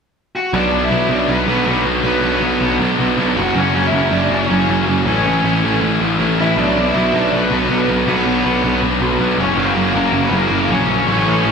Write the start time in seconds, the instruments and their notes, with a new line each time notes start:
0.36 overdriven electric guitar F#4 F#5
0.53 picked electric bass B1, distorted electric guitar B2 F#3 B3 D4 F#4, overdriven electric guitar D4 D5
0.72 distorted electric guitar B2 F#3 B3 D4 F#4
0.84 overdriven electric guitar E4 E5
0.91 picked electric bass B1, distorted electric guitar B2 F#3 B3 D4 F#4
1.09 picked electric bass B1, distorted electric guitar B2 F#3 B3 D4 F#4, overdriven electric guitar D4 D5
1.28 picked electric bass B1, distorted electric guitar B2 F#3 B3 D4 F#4, overdriven electric guitar B4
1.33 overdriven electric guitar B3
1.47 picked electric bass B1, distorted electric guitar B2 F#3 B3 D4 F#4
1.66 picked electric bass B1, distorted electric guitar B2 F#3 B3 D4 F#4
1.85 distorted electric guitar B2 F#3 B3 D4 F#4
2.03 picked electric bass B1, distorted electric guitar B2 F#3 B3 D4 F#4, overdriven electric guitar B3 B4
2.23 distorted electric guitar B2 F#3 B3 D4 F#4
2.41 picked electric bass B1, distorted electric guitar B2 F#3 B3 D4 F#4
2.60 picked electric bass B1, distorted electric guitar B2 F#3 B3 D4 F#4
2.79 picked electric bass B1, distorted electric guitar B2 F#3 B3 D4 F#4
2.98 picked electric bass B1, distorted electric guitar B2 F#3 B3 D4 F#4
3.17 picked electric bass B1, distorted electric guitar B2 F#3 B3 D4 F#4
3.35 picked electric bass F#1, distorted electric guitar F#2 C#3 F#3 A#3 C#4 F#4, overdriven electric guitar F#4 F#5
3.55 picked electric bass F#1, distorted electric guitar F#2 C#3 F#3 A#3 C#4 F#4, overdriven electric guitar C#4
3.59 overdriven electric guitar C#5
3.74 distorted electric guitar F#2 C#3 F#3 A#3 C#4 F#4
3.86 overdriven electric guitar E4 E5
3.92 picked electric bass F#1, distorted electric guitar F#2 C#3 F#3 A#3 C#4 F#4
4.11 picked electric bass F#1, distorted electric guitar F#2 C#3 F#3 A#3 C#4 F#4, overdriven electric guitar D4 D5
4.30 picked electric bass F#1, distorted electric guitar F#2 C#3 F#3 A#3 C#4 F#4, overdriven electric guitar C#4 C#5
4.48 picked electric bass F#1, distorted electric guitar F#2 C#3 F#3 A#3 C#4 F#4
4.67 picked electric bass F#1, distorted electric guitar F#2 C#3 F#3 A#3 C#4 F#4
4.87 distorted electric guitar F#2 C#3 F#3 A#3 C#4 F#4
5.05 picked electric bass A1, distorted electric guitar A2 E3 A3 C#4 E4, overdriven electric guitar C#4 C#5
5.25 distorted electric guitar A2 E3 A3 C#4 E4
5.44 picked electric bass A1, distorted electric guitar A2 E3 A3 C#4 E4
5.63 picked electric bass A1, distorted electric guitar A2 E3 A3 C#4 E4
5.81 picked electric bass A1, distorted electric guitar A2 E3 A3 C#4 E4
6.00 picked electric bass A1, distorted electric guitar A2 E3 A3 C#4 E4
6.18 picked electric bass A1, distorted electric guitar A2 E3 A3 C#4 E4
6.38 distorted electric guitar A2 E3 A3 C#4 E4, overdriven electric guitar E4 E5
6.56 picked electric bass B1, distorted electric guitar B2 F#3 B3 D4 F#4, overdriven electric guitar D4 D5
6.75 distorted electric guitar B2 F#3 B3 D4 F#4
6.86 overdriven electric guitar E4 E5
6.94 picked electric bass B1, distorted electric guitar B2 F#3 B3 D4 F#4
7.12 picked electric bass B1, distorted electric guitar B2 F#3 B3 D4 F#4, overdriven electric guitar D4
7.18 overdriven electric guitar D5
7.32 picked electric bass B1, distorted electric guitar B2 F#3 B3 D4 F#4, overdriven electric guitar B3
7.38 overdriven electric guitar B4
7.50 picked electric bass B1, distorted electric guitar B2 F#3 B3 D4 F#4
7.69 picked electric bass B1, distorted electric guitar B2 F#3 B3 D4 F#4
7.88 distorted electric guitar B2 F#3 B3 D4 F#4
8.06 picked electric bass B1, distorted electric guitar B2 F#3 B3 D4 F#4, overdriven electric guitar B3
8.11 overdriven electric guitar B4
8.25 distorted electric guitar B2 F#3 B3 D4 F#4
8.44 picked electric bass B1, distorted electric guitar B2 F#3 B3 D4 F#4
8.63 picked electric bass B1, distorted electric guitar B2 F#3 B3 D4 F#4
8.81 picked electric bass B1, distorted electric guitar B2 F#3 B3 D4 F#4
9.01 picked electric bass B1, distorted electric guitar B2 F#3 B3 D4 F#4
9.18 picked electric bass B1, distorted electric guitar B2 F#3 B3 D4 F#4
9.37 picked electric bass F#1, distorted electric guitar F#2 C#3 F#3 A#3 C#4 F#4, overdriven electric guitar C#4 C#5
9.56 picked electric bass F#1, distorted electric guitar F#2 C#3 F#3 A#3 C#4 F#4, overdriven electric guitar A#3 A#4
9.75 distorted electric guitar F#2 C#3 F#3 A#3 C#4 F#4
9.93 picked electric bass F#1, distorted electric guitar F#2 C#3 F#3 A#3 C#4 F#4, overdriven electric guitar A#3
9.97 overdriven electric guitar A#4
10.13 picked electric bass F#1, distorted electric guitar F#2 C#3 F#3 A#3 C#4 F#4
10.26 overdriven electric guitar B3 B4
10.31 picked electric bass F#1, distorted electric guitar F#2 C#3 F#3 A#3 C#4 F#4, overdriven electric guitar A#3 A#4
10.50 picked electric bass F#1, distorted electric guitar F#2 C#3 F#3 A#3 C#4 F#4
10.61 overdriven electric guitar A#3 A#4
10.69 picked electric bass A#1, distorted electric guitar F#2 C#3 F#3 A#3 C#4 F#4, overdriven electric guitar C#4 C#5
10.88 distorted electric guitar F#2 C#3 F#3 A#3 C#4 F#4
11.07 picked electric bass A1, distorted electric guitar A2 E3 A3 C#4 E4, overdriven electric guitar C#5
11.11 overdriven electric guitar C#4
11.24 distorted electric guitar A2 E3 A3 C#4 E4
11.44 picked electric bass A1, distorted electric guitar A2 E3 A3 C#4 E4